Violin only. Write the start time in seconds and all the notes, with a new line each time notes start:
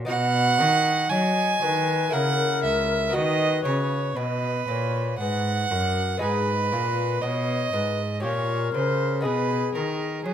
0.08 F#5
1.10 G#5
2.13 F#5
2.64 E5
3.14 D#5
3.65 C#5
4.16 B4
5.19 F#5
6.22 B4
7.22 D#5
8.23 C#5
8.74 C5
9.24 B4
9.75 A#4
10.25 G#4